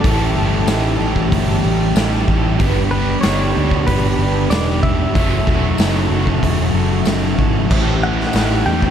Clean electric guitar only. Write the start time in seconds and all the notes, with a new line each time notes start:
0.01 A4
2.91 B4
3.21 C#5
3.87 B4
4.50 D5
4.83 E5
8.03 F#5
8.66 G5